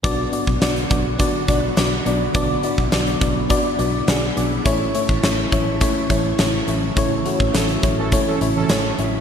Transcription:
<<
  \new Staff \with { instrumentName = "FM electric piano" } { \time 4/4 \key b \minor \tempo 4 = 104 <b d' fis' d''>8 <b d' fis' d''>8 <b d' fis' d''>8 <b d' fis' d''>8 <b d' fis' d''>8 <b d' fis' d''>8 <b d' fis' d''>8 <b d' fis' d''>8 | <b d' fis' d''>8 <b d' fis' d''>8 <b d' fis' d''>8 <b d' fis' d''>8 <b d' fis' d''>8 <b d' fis' d''>8 <b d' fis' gis'>8 <b d' fis' d''>8 | <a cis' e' cis''>8 <a cis' e' cis''>8 <a cis' e' cis''>8 <a cis' e' cis''>8 <a cis' e' cis''>8 <a cis' e' cis''>8 <a cis' e' cis''>8 <a cis' e' cis''>8 | <a cis' e' cis''>8 <a cis' e' fis'>8 <a cis' e' cis''>8 <a cis' e' cis''>8 <a cis' e' cis''>8 <a cis' e' cis''>8 <a cis' e' cis''>8 <a cis' e' cis''>8 | }
  \new Staff \with { instrumentName = "Analog polysynth" } { \time 4/4 \key b \minor r1 | r1 | r1 | r4 <e cis' a'>16 r8 <e cis' a'>16 r16 <e cis' a'>16 r16 <e cis' a'>8. r8 | }
  \new Staff \with { instrumentName = "String machine" } { \clef bass \time 4/4 \key b \minor << { fis'1 | e'1~ | e'1~ | e'1 | } \\ { <d fis b>1~ | <d fis b>1 | <cis e a>1~ | <cis e a>1 | } >> }
  \new Staff \with { instrumentName = "Fingered electric bass" } { \clef bass \time 4/4 \key b \minor b,,8 r16 b,,16 b,,8 b,,8. r16 b,,8 b,,8 b,,8 | b,,8 r16 b,,16 b,,8 b,,8. r16 b,,8 b,,8 b,,8 | a,,8 r16 a,,16 a,,8 a,,8. r16 a,,8 a,,8 a,,8 | a,,8 r16 a,,16 a,,8 a,,8. r16 a,,8 a,,8 a,,8 | }
  \new DrumStaff \with { instrumentName = "Drums" } \drummode { \time 4/4 <hh bd>8 hh16 bd16 <hh sn>16 hh16 <hh bd>8 <hh bd>8 <hh bd>8 <hh sn>8 hh8 | <hh bd>8 hh16 bd16 <hh sn>16 hh16 <hh bd>8 <hh bd>8 hh8 <hh sn>8 hh8 | <hh bd>8 hh16 bd16 <hh sn>8 <hh bd>8 <hh bd>8 <hh bd>8 <hh sn>8 hh8 | <hh bd>8 hh16 bd16 <hh sn>16 hh16 <hh bd>8 <hh bd>8 hh8 <hh sn>8 hh8 | }
>>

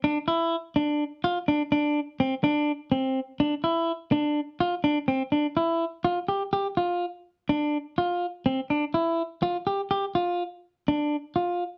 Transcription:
\new Staff \with { instrumentName = "Clean electric guitar" } { \time 7/8 \key d \minor \tempo 4 = 124 d'8 e'4 d'4 f'8 d'8 | d'4 c'8 d'4 c'4 | d'8 e'4 d'4 f'8 d'8 | c'8 d'8 e'4 f'8 g'8 g'8 |
f'4 r8 d'4 f'4 | c'8 d'8 e'4 f'8 g'8 g'8 | f'4 r8 d'4 f'4 | }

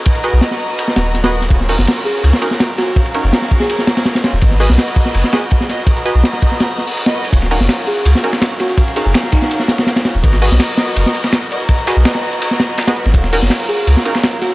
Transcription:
<<
  \new Staff \with { instrumentName = "String section" } { \time 4/4 \key ees \minor \tempo 4 = 165 <ges' ces'' ees'' bes''>2.~ <ges' ces'' ees'' bes''>16 <ges' bes' ces'' ees''>8. | <des' f' ges' bes'>2.~ <des' f' ges' bes'>8 <des' f' ges' bes'>8 | <des' ges' bes' f''>2.~ <des' ges' bes' f''>8 <des' f' ges' bes'>8 | <ges' bes' ces'' ees''>2.~ <ges' bes' ces'' ees''>8 <ges' bes' ces'' ees''>8 |
<ges' ces'' ees'' bes''>2.~ <ges' ces'' ees'' bes''>16 <ges' bes' ces'' ees''>8. | <des' f' ges' bes'>2.~ <des' f' ges' bes'>8 <des' f' ges' bes'>8 | <des' ges' bes' f''>2.~ <des' ges' bes' f''>8 <des' f' ges' bes'>8 | <ges' bes' ces'' ees''>2.~ <ges' bes' ces'' ees''>8 <ges' bes' ces'' ees''>8 |
<ges' ces'' ees'' bes''>2.~ <ges' ces'' ees'' bes''>8 <ges' bes' ces'' ees''>8 | <des' f' ges' bes'>2.~ <des' f' ges' bes'>8 <des' f' ges' bes'>8 | }
  \new Staff \with { instrumentName = "FM electric piano" } { \time 4/4 \key ees \minor r1 | r4. aes'8 r4. ges'8 | r4. r16 aes'8. r4. | r1 |
r1 | r4. aes'8 r4. ges'8 | r8 aes'16 aes'16 r8 ees'8. r4. r16 | r1 |
r1 | r4. aes'8 r4. ges'8 | }
  \new Staff \with { instrumentName = "Synth stab" } { \time 4/4 \key ees \minor r8 <ges' aes' ces'' ees''>2~ <ges' aes' ces'' ees''>8. <ges' aes' ces'' ees''>16 r8 | r8 <des' ees' ges' bes'>16 r4. r16 <des' ees' ges' bes'>16 r4 r16 | r8 <des' ees' ges' bes'>2.~ <des' ees' ges' bes'>8 | r8 <ges' aes' ces'' ees''>16 r4. r16 <ges' aes' ces'' ees''>16 r4 r16 |
r8 <ges' aes' ces'' ees''>2.~ <ges' aes' ces'' ees''>8 | r8 <des' ees' ges' bes'>16 r4. r16 <des' ees' ges' bes'>16 r4 r16 | r8 <des' ees' ges' bes'>2.~ <des' ees' ges' bes'>8 | r8 <ges' aes' ces'' ees''>16 r2. r16 |
r8 <ges' aes' ces'' ees''>2~ <ges' aes' ces'' ees''>8. <ges' aes' ces'' ees''>16 r8 | r8 <des' ees' ges' bes'>16 r4. r16 <des' ees' ges' bes'>16 r4 r16 | }
  \new Staff \with { instrumentName = "Sub bass" } { \clef bass \time 4/4 \key ees \minor r8. ces,16 r4. ees,,4. | ees,,8. ges,,16 r4 des,16 r4. r16 | r8. ges,,16 r2 r8. ees,,16 | aes,,8. ces,16 r4 ges,,16 r4. r16 |
r8. ces,16 r2. | ees,,8. ges,,16 r4 des,16 r4. r16 | r8. ges,,16 r2 r8. ees,,16 | aes,,8. ces,16 r4 ges,,16 r4. r16 |
r8. ces,16 r2 r8. aes,,16 | ees,,8. ges,,16 r4 des,16 r4. r16 | }
  \new DrumStaff \with { instrumentName = "Drums" } \drummode { \time 4/4 <bd cymr>16 cymr16 cymr8 <cymr sn>16 sn8. cymr16 sn16 <cymr sn>8 <cymr sn>16 <cymr sn>8 <cymr sn>16 | <bd cymr>16 sn16 hho16 sn16 <cymr sn>4 cymr16 sn16 cymr16 sn16 <cymr sn>8 <cymr sn>8 | <bd cymr>16 cymr16 cymr8 <cymr sn>16 sn16 <bd cymr>16 sn16 cymr16 sn16 <cymr sn>16 <cymr sn>16 <cymr sn>16 <cymr sn>16 <cymr sn>8 | <bd cymr>16 sn16 hho16 sn16 <cymr sn>8 <bd cymr>16 sn16 cymr16 sn16 <cymr sn>8 <bd cymr>16 sn16 <cymr sn>8 |
<bd cymr>16 cymr16 cymr8 <cymr sn>16 sn16 <bd cymr>16 sn16 <cymr sn>8 sn16 hho16 cymr16 <cymr sn>8 cymr16 | <hh bd cymr>16 sn16 <hh hho>16 sn16 <hh cymr sn>8 hh8 <hh cymr>16 sn16 <hh cymr>16 sn16 <hh cymr sn>16 hh16 <hh cymr sn>16 hh16 | <hh bd cymr>16 cymr16 <hh cymr>8 <hh cymr sn>16 sn16 <hh bd cymr sn>16 <hh sn>16 <hh cymr>16 sn16 <hh cymr sn>16 <cymr sn>16 <hh cymr sn>16 <cymr sn>16 <hh cymr sn>8 | <hh bd cymr>16 sn16 <hh hho>16 sn16 <hh cymr sn>8 <hh cymr sn>8 <hh cymr>16 sn16 <hh cymr>16 sn16 <hh cymr sn>16 hh16 <hh cymr>16 hh16 |
<hh bd cymr>16 cymr16 <hh cymr sn>8 <hh cymr sn>16 sn16 hh16 hh16 <hh cymr>16 sn16 <hh cymr sn>8 <hh cymr sn>16 <hh cymr sn>16 hh16 <cymr sn>16 | <hh bd cymr>16 sn16 <hh hho>16 sn16 <hh cymr sn>8 hh8 <hh cymr>16 sn16 <hh cymr>16 sn16 <hh cymr sn>16 hh16 <hh cymr sn>16 hh16 | }
>>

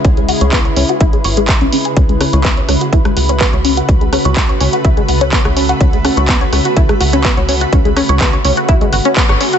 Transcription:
<<
  \new Staff \with { instrumentName = "Synth arpeggio sound" } { \time 4/4 \key a \lydian \tempo 4 = 125 cis'16 gis16 fis'16 cis''16 b16 cis''16 cis'16 fis'16 e'16 gis16 cis''16 gis16 e'16 cis'16 cis16 gis'16 | cis'16 gis16 cis'16 cis''16 b16 cis''16 cis'16 fis'16 e'16 gis16 fis'16 cis'16 b16 cis''16 cis'16 fis'16 | cis'16 gis16 cis'16 cis''16 b16 cis''16 cis'16 fis'16 e'16 gis16 fis'16 cis'16 b16 cis''16 cis'16 fis'16 | cis'16 gis16 cis'16 cis''16 b16 cis''16 cis'16 fis'16 e'16 gis16 fis'16 cis'16 b16 cis''16 cis'16 fis'16 |
cis'16 gis16 cis'16 cis''16 b16 cis''16 cis'16 fis'16 e'16 gis16 fis'16 cis'16 b16 cis''16 cis'16 fis'16 | }
  \new Staff \with { instrumentName = "Ambient pad" } { \time 4/4 \key a \lydian << { <cis b'>1~ | <cis b'>1~ | <cis b'>1~ | <cis b'>1~ |
<cis b'>1 | } \\ { <gis e'>1 | <a fis'>1~ | <a fis'>1~ | <a fis'>1~ |
<a fis'>1 | } >> }
  \new Staff \with { instrumentName = "Analog synth bass" } { \clef bass \time 4/4 \key a \lydian cis,8 r16 cis,8 r16 cis,16 r16 b,,16 r16 gis,,8 r16 b,,16 r8 | cis,8 r16 cis,8 r16 cis,16 r16 cis,16 r16 cis,8 r16 cis,8 r16 | cis,8 r16 cis,8 r16 cis,16 r16 cis,16 r16 cis,8 r16 cis,8 r16 | cis,8 r16 cis,8 r16 cis,16 r16 cis,16 r16 cis,8 r16 cis,8 r16 |
cis,8 r16 cis,8 r16 cis,16 r16 cis,16 r16 gis,,16 r8 gis,,16 r8 | }
  \new DrumStaff \with { instrumentName = "Drums" } \drummode { \time 4/4 <hh bd>16 hh16 hho16 hh16 <hc hh bd>16 hh16 hho16 hh16 <hh bd>16 hh16 hho16 hh16 <hc hh bd>16 hh16 hho16 hh16 | <hh bd>16 hh16 <hho ss>16 hh16 <hc hh bd>16 hh16 <hho ss>16 hh16 <hh bd>16 <hh ss>16 hho16 hh16 <hc hh bd>16 hh16 hho16 hh16 | <hh bd>16 hh16 <hho ss>16 hh16 <hc hh bd>16 hh16 hho16 hh16 <hh bd>16 hh16 hho16 hh16 <hc hh bd>16 <hh ss>16 hho16 hh16 | <hh bd>16 hh16 <hho ss>16 hh16 <hc hh bd>16 hh16 <hho ss>16 hh16 <hh bd>16 <hh ss>16 hho16 hh16 <hc hh bd>16 hh16 hho16 hh16 |
<hh bd>16 hh16 <hho ss>16 hh16 <hc hh bd>16 hh16 hho16 hh16 <hh bd>16 hh16 hho16 hh16 <hc hh bd>16 <hh ss>16 hho16 hh16 | }
>>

